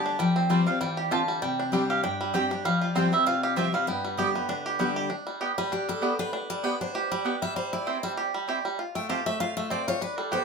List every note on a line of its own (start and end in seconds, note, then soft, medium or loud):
0.00 0.18 D3 medium
0.00 0.18 G3 medium
0.00 0.19 G3 medium
0.00 0.19 B3 medium
0.00 0.19 G4 medium
0.00 0.70 G4 medium
0.00 0.17 A5 loud
0.06 0.20 D4 medium
0.19 0.48 F3 loud
0.19 0.50 G3 medium
0.19 0.67 G5 medium
0.36 1.62 C4 medium
0.49 0.66 F3 medium
0.49 0.80 G3 medium
0.49 0.66 G3 medium
0.49 0.60 C4 medium
0.49 0.67 C4 medium
0.49 0.60 F4 loud
0.49 0.65 G4 medium
0.49 0.60 C5 medium
0.49 0.60 G5 loud
0.66 0.81 C4 medium
0.66 1.09 F4 medium
0.66 0.80 G4 medium
0.66 0.81 F5 medium
0.81 1.10 E3 medium
0.81 1.28 G3 medium
0.81 1.12 G5 medium
0.97 1.90 G4 medium
1.11 1.41 D3 medium
1.11 1.21 C4 medium
1.11 1.42 F4 medium
1.11 1.21 F4 loud
1.11 1.22 C5 loud
1.11 1.22 G5 medium
1.11 1.40 A5 loud
1.28 1.42 G3 medium
1.42 2.01 C3 loud
1.42 1.73 G3 medium
1.42 1.86 G5 medium
1.59 2.01 D4 medium
1.72 2.02 G3 medium
1.72 2.20 G3 medium
1.72 1.83 C4 medium
1.72 2.02 C4 medium
1.72 2.03 D4 medium
1.72 1.83 G4 loud
1.72 2.03 G4 loud
1.72 1.83 D5 loud
1.72 1.83 G5 loud
1.90 2.35 G4 medium
1.90 2.03 F5 medium
2.03 2.62 G2 loud
2.03 2.48 D4 medium
2.03 2.32 G5 loud
2.21 2.65 G3 medium
2.33 2.50 G3 medium
2.33 2.44 C4 medium
2.33 2.51 C4 medium
2.33 2.51 D4 loud
2.33 2.44 G4 medium
2.33 2.84 G4 medium
2.33 2.50 G4 medium
2.33 2.44 D5 medium
2.33 2.65 G5 loud
2.33 2.44 G5 loud
2.51 2.65 D4 medium
2.51 2.66 D4 soft
2.51 2.64 G4 medium
2.65 2.95 F3 medium
2.65 3.12 G3 medium
2.65 3.09 F5 medium
2.81 3.24 F4 medium
2.95 3.12 F3 medium
2.95 3.12 G3 medium
2.95 3.05 C4 medium
2.95 3.40 C4 medium
2.95 3.13 C4 loud
2.95 3.05 F4 loud
2.95 3.11 G4 medium
2.95 3.06 C5 loud
2.95 3.06 G5 loud
3.12 3.60 G3 medium
3.12 3.27 C4 medium
3.12 3.26 G4 medium
3.12 3.26 E5 medium
3.26 3.85 C3 loud
3.26 3.56 F4 medium
3.26 3.42 F5 medium
3.43 4.18 G4 medium
3.43 3.56 F5 medium
3.56 3.73 F3 medium
3.56 3.73 G3 medium
3.56 3.67 C4 loud
3.56 3.74 C4 medium
3.56 3.67 F4 loud
3.56 3.88 F4 medium
3.56 3.71 G4 loud
3.56 3.67 C5 loud
3.56 3.73 E5 medium
3.56 3.67 G5 loud
3.73 4.04 G3 medium
3.73 3.88 C4 soft
3.73 3.87 G4 medium
3.73 3.87 F5 loud
3.87 4.46 G2 loud
3.87 4.32 B3 medium
3.87 4.76 G5 medium
4.05 4.46 G3 medium
4.17 4.34 D3 medium
4.17 4.35 G3 medium
4.17 4.28 B3 medium
4.17 4.35 B3 medium
4.17 4.28 G4 loud
4.17 4.63 G4 medium
4.17 4.33 G4 loud
4.17 4.29 D5 loud
4.17 4.29 G5 loud
4.34 4.77 B3 medium
4.34 4.49 B3 medium
4.34 4.48 G4 medium
4.49 4.78 D3 medium
4.49 4.93 D4 medium
4.66 4.95 G4 medium
4.79 5.09 D3 medium
4.79 5.09 G3 medium
4.79 5.11 G3 medium
4.79 4.90 B3 medium
4.79 5.09 B3 medium
4.79 4.90 G4 medium
4.79 5.10 G4 loud
4.79 4.90 D5 medium
4.79 4.90 G5 loud
4.96 5.10 G4 medium
5.10 5.72 D4 medium
5.27 5.58 G3 medium
5.41 5.51 B3 medium
5.41 6.81 G4 medium
5.41 5.51 G4 medium
5.41 5.51 D5 loud
5.41 5.51 G5 loud
5.58 5.88 G3 medium
5.58 5.72 B4 medium
5.72 6.16 D4 medium
5.72 5.89 G4 medium
5.89 6.50 G3 medium
5.89 6.18 A4 medium
6.02 6.12 B3 loud
6.02 6.47 B3 medium
6.02 6.12 G4 medium
6.02 6.12 D5 loud
6.02 6.13 G5 medium
6.19 6.32 D4 medium
6.19 6.33 B4 loud
6.33 6.77 D4 medium
6.50 6.92 G3 medium
6.50 6.64 D5 loud
6.63 6.74 B3 loud
6.63 7.08 B3 medium
6.63 6.74 G4 medium
6.63 6.80 B4 medium
6.63 6.74 D5 loud
6.63 6.74 G5 loud
6.81 7.23 D4 medium
6.81 7.10 C5 medium
6.95 7.39 G4 medium
7.12 7.41 G3 medium
7.12 7.25 D5 medium
7.25 7.35 B3 medium
7.25 7.56 D4 medium
7.25 7.35 G4 medium
7.25 7.35 D5 loud
7.25 7.35 G5 medium
7.42 7.55 G3 medium
7.42 7.56 E5 loud
7.56 8.00 G3 medium
7.56 7.73 C5 medium
7.73 8.15 E4 medium
7.73 8.02 D5 medium
7.86 7.96 C4 medium
7.86 8.31 C4 medium
7.86 7.97 E4 loud
7.86 7.97 C5 loud
7.86 7.97 G5 loud
8.03 8.33 G3 medium
8.03 8.12 E5 loud
8.17 8.47 G4 medium
8.34 8.64 G3 medium
8.48 8.58 C4 medium
8.48 8.58 E4 medium
8.48 8.79 G4 medium
8.48 8.58 C5 medium
8.48 8.58 G5 loud
8.65 8.79 G3 medium
8.79 9.23 F4 medium
8.95 9.25 A3 medium
8.95 9.09 G5 medium
9.09 9.19 C4 medium
9.09 9.19 F4 medium
9.09 9.54 G4 medium
9.09 9.20 C5 loud
9.09 9.26 F5 medium
9.09 9.20 A5 medium
9.26 9.56 A3 medium
9.26 9.40 E5 loud
9.40 9.84 F4 medium
9.40 9.56 F5 loud
9.57 9.99 A3 medium
9.57 9.70 E5 medium
9.70 9.80 C4 medium
9.70 10.01 C4 medium
9.70 9.81 F4 medium
9.70 9.81 C5 medium
9.70 9.87 D5 medium
9.70 9.81 A5 medium
9.88 10.01 F4 medium
9.88 10.01 C#5 loud
10.01 10.45 D4 medium
10.01 10.18 B4 medium
10.18 10.45 G3 medium
10.18 10.32 A4 medium
10.31 10.42 B3 medium
10.31 10.42 G4 medium
10.31 10.45 G4 medium
10.31 10.45 C5 medium
10.31 10.42 D5 loud
10.31 10.42 G5 loud